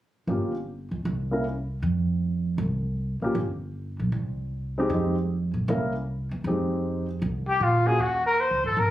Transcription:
0.27 upright bass G1, grand piano A#3 C#4 F4 G4
0.91 upright bass C#2
1.05 upright bass C2
1.31 grand piano A#3 C#4 E4 A#4
1.82 upright bass F2
2.58 upright bass C2
3.22 grand piano A#3 C#4 F4 G4, muted upright bass stroke
3.35 upright bass G1
3.99 upright bass B1
4.12 upright bass C2
4.78 grand piano G#3 C4 D#4 G4
4.90 upright bass F2, grand piano G#3 C4 D#4 G4
5.54 upright bass B1
5.68 upright bass C2, grand piano A#3 C#4 E4 A#4
6.31 upright bass E2
6.44 upright bass F2, grand piano G#3 C4 D#4 G4
7.22 upright bass C2
7.49 trumpet G4
7.60 upright bass A#2, trumpet F4
7.86 grand piano A#3 C#4 F4 F#4, trumpet G#4
7.99 upright bass D#2, trumpet F#4
8.26 trumpet A#4
8.40 trumpet C5
8.51 upright bass C#2
8.64 upright bass G1, trumpet A4
8.77 upright bass G#1, trumpet A#4

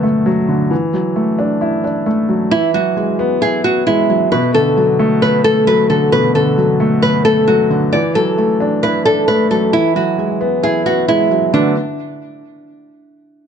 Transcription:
Already playing: grand piano B2 D3 F#3 A3 B3
0.03 grand piano A3
0.26 grand piano F#3
0.48 grand piano D3
0.71 grand piano E3
0.94 grand piano F#3
1.16 grand piano A3
1.39 grand piano D4
1.61 grand piano E4
1.84 grand piano D4
2.06 grand piano A3
2.29 grand piano F#3
2.51 grand piano E3, nylon-string guitar E4
2.74 grand piano F#3, nylon-string guitar F#4
2.97 grand piano G#3
3.19 grand piano B3
3.41 grand piano E4, nylon-string guitar G#4
3.64 grand piano B3, nylon-string guitar F#4
3.87 grand piano G#3, nylon-string guitar E4
4.09 grand piano F#3
4.32 grand piano B2, nylon-string guitar B4
4.54 grand piano D3, nylon-string guitar A4
4.77 grand piano F#3
4.99 grand piano A3
5.22 grand piano B3, nylon-string guitar B4
5.44 grand piano A3, nylon-string guitar A4
5.67 grand piano F#3, nylon-string guitar B4
5.90 grand piano D3, nylon-string guitar A4
6.12 grand piano B2, nylon-string guitar B4
6.35 grand piano D3, nylon-string guitar A4
6.57 grand piano F#3
6.80 grand piano A3
7.02 grand piano B3, nylon-string guitar B4
7.25 grand piano A3, nylon-string guitar A4
7.47 grand piano F#3, nylon-string guitar F#4
7.70 grand piano D3
7.93 grand piano E3, nylon-string guitar D5
8.15 grand piano F#3, nylon-string guitar A4
8.38 grand piano A3
8.60 grand piano D4
8.83 grand piano E4, nylon-string guitar B4
9.05 grand piano D4, nylon-string guitar A4
9.28 grand piano A3, nylon-string guitar B4
9.51 grand piano F#3, nylon-string guitar A4
9.73 grand piano E3, nylon-string guitar E4
9.96 grand piano F#3, nylon-string guitar F#4
10.18 grand piano G#3
10.41 grand piano B3
10.63 grand piano E4, nylon-string guitar G#4
10.86 grand piano B3, nylon-string guitar F#4
11.08 grand piano G#3, nylon-string guitar E4
11.31 grand piano F#3
11.54 grand piano D3 F#3 A3 B3, nylon-string guitar D4

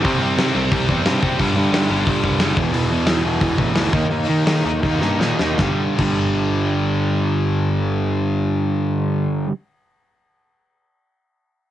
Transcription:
0.03 picked electric bass C2, distorted electric guitar C3 G3 C4, kick, open hi-hat
0.22 picked electric bass C3, distorted electric guitar C3 G3 C4
0.37 picked electric bass C3, distorted electric guitar C3 G3 C4, snare, open hi-hat
0.55 picked electric bass C2, distorted electric guitar C3 G3 C4
0.71 picked electric bass C2, distorted electric guitar C3 G3 C4, kick, open hi-hat
0.89 picked electric bass E2, distorted electric guitar C3 G3 C4, kick
1.06 picked electric bass G2, distorted electric guitar C3 G3 C4, snare, open hi-hat
1.22 picked electric bass F#1, distorted electric guitar C3 G3 C4, kick
1.39 picked electric bass G1, distorted electric guitar G2 D3 G3, kick, open hi-hat
1.56 picked electric bass G2, distorted electric guitar G2 D3 G3
1.72 distorted electric guitar G2 D3 G3, picked electric bass G2, snare, open hi-hat
1.89 picked electric bass G1, distorted electric guitar G2 D3 G3
2.07 picked electric bass G1, distorted electric guitar G2 D3 G3, kick, open hi-hat
2.24 picked electric bass C2, distorted electric guitar G2 D3 G3, kick
2.40 picked electric bass F#1, distorted electric guitar G2 D3 G3, snare, open hi-hat
2.57 picked electric bass E1, distorted electric guitar E2 B2 E3, kick
2.73 picked electric bass E1, distorted electric guitar E2 B2 E3, open hi-hat
2.90 distorted electric guitar E2 B2 E3, picked electric bass E2
3.06 picked electric bass E2, distorted electric guitar E2 B2 E3, snare, open hi-hat
3.24 picked electric bass E1, distorted electric guitar E2 B2 E3
3.41 picked electric bass E1, distorted electric guitar E2 B2 E3, kick, open hi-hat
3.58 picked electric bass A1, distorted electric guitar E2 B2 E3, kick
3.75 picked electric bass D2, distorted electric guitar E2 B2 E3, snare, open hi-hat
3.92 picked electric bass D#2, distorted electric guitar D#3 A#3 D#4, kick
4.10 picked electric bass D#2, distorted electric guitar D#3 A#3 D#4, open hi-hat
4.28 distorted electric guitar D#3 A#3 D#4, picked electric bass D#3
4.45 picked electric bass D#3, distorted electric guitar D#3 A#3 D#4, snare, open hi-hat
4.64 picked electric bass D#2, distorted electric guitar D#3 A#3 D#4
4.81 picked electric bass D#2, distorted electric guitar D#3 A#3 D#4, kick, snare
5.00 picked electric bass G2, distorted electric guitar D#3 A#3 D#4, snare
5.19 picked electric bass A#2, distorted electric guitar D#3 A#3 D#4, snare
5.39 picked electric bass D#2, distorted electric guitar D#3 A#3 D#4, snare
5.58 picked electric bass G1, distorted electric guitar G2 D3 G3, kick, snare
5.96 picked electric bass G1, distorted electric guitar G2 D3, kick, crash
6.01 distorted electric guitar G3

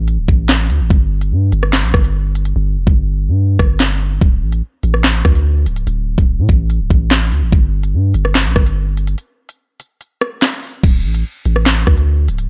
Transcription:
Already playing: 808-style bass A1
0.08 closed hi-hat
0.18 808-style bass C#1
0.28 808-style bass A1, kick, closed hi-hat
0.49 snare, clap
0.70 808-style bass D2, closed hi-hat
0.80 808-style bass A1
0.90 808-style bass G1, kick, closed hi-hat
1.21 closed hi-hat
1.32 808-style bass G2
1.52 808-style bass G1, closed hi-hat
1.63 cross-stick
1.73 snare, clap, closed hi-hat
1.84 808-style bass A#1
1.94 808-style bass G1, kick, cross-stick
2.04 closed hi-hat
2.35 closed hi-hat
2.45 closed hi-hat
2.56 808-style bass G1
2.77 808-style bass F1
2.87 808-style bass G1, kick
3.28 808-style bass G2
3.59 808-style bass G1, kick, cross-stick
3.80 snare, clap
4.21 808-style bass D1, kick, closed hi-hat
4.42 808-style bass A1
4.52 closed hi-hat
4.83 808-style bass A1, closed hi-hat
4.94 cross-stick
5.04 snare, clap, closed hi-hat
5.25 808-style bass D2, kick, cross-stick
5.35 closed hi-hat
5.66 808-style bass C#1, closed hi-hat
5.76 closed hi-hat
5.87 808-style bass D1, closed hi-hat
6.18 808-style bass D1, kick, closed hi-hat
6.39 808-style bass A2
6.49 808-style bass A1, kick, closed hi-hat
6.70 closed hi-hat
6.80 808-style bass C#1
6.90 808-style bass A1, kick, closed hi-hat
7.11 snare, clap
7.32 808-style bass D2, closed hi-hat
7.42 808-style bass A1
7.52 808-style bass G1, kick, closed hi-hat
7.83 closed hi-hat
7.94 808-style bass G2
8.14 808-style bass G1, closed hi-hat
8.25 cross-stick
8.35 snare, clap, closed hi-hat
8.46 808-style bass A#1
8.56 808-style bass G1, kick, cross-stick
8.66 closed hi-hat
8.97 closed hi-hat
9.07 closed hi-hat
9.18 closed hi-hat
9.49 closed hi-hat
9.80 closed hi-hat
10.01 closed hi-hat
10.21 cross-stick, closed hi-hat
10.42 snare, clap
10.63 open hi-hat
10.84 808-style bass D1, kick, closed hi-hat, crash
11.04 808-style bass A1
11.14 closed hi-hat
11.45 808-style bass A1, closed hi-hat
11.56 cross-stick
11.66 snare, clap, closed hi-hat
11.87 808-style bass D2, kick, cross-stick
11.97 closed hi-hat
12.28 808-style bass C#1, closed hi-hat
12.38 closed hi-hat

